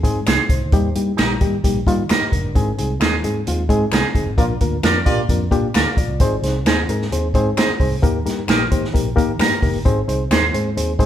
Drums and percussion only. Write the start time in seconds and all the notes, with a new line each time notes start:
0.04 kick, closed hi-hat
0.27 finger snap, snare, closed hi-hat
0.49 kick, closed hi-hat
0.72 kick, closed hi-hat
0.95 closed hi-hat
1.18 finger snap, snare, closed hi-hat
1.41 kick, closed hi-hat
1.64 kick, closed hi-hat
1.87 kick, closed hi-hat
2.09 finger snap, snare, closed hi-hat
2.32 kick, closed hi-hat
2.55 kick, closed hi-hat
2.78 closed hi-hat
3.01 finger snap, snare, closed hi-hat
3.24 closed hi-hat
3.47 closed hi-hat
3.69 kick, closed hi-hat
3.92 finger snap, snare, closed hi-hat
4.15 kick, closed hi-hat
4.38 kick, closed hi-hat
4.61 kick, closed hi-hat
4.83 finger snap, snare, closed hi-hat
5.06 kick, closed hi-hat
5.29 kick, closed hi-hat
5.51 kick, closed hi-hat
5.74 finger snap, snare, closed hi-hat
5.97 kick, closed hi-hat
6.20 kick, closed hi-hat
6.43 snare, closed hi-hat
6.66 finger snap, snare, closed hi-hat
6.89 closed hi-hat
7.02 snare
7.12 closed hi-hat
7.34 kick, closed hi-hat
7.57 finger snap, snare, closed hi-hat
7.80 kick, open hi-hat
8.03 kick, closed hi-hat
8.26 snare, closed hi-hat
8.48 finger snap, snare, closed hi-hat
8.71 kick, closed hi-hat
8.84 snare
8.95 kick, closed hi-hat
9.17 kick, closed hi-hat
9.39 finger snap, snare, closed hi-hat
9.62 kick, open hi-hat
9.85 kick, closed hi-hat
10.09 closed hi-hat
10.31 finger snap, snare, closed hi-hat
10.54 closed hi-hat
10.77 closed hi-hat
10.99 kick, closed hi-hat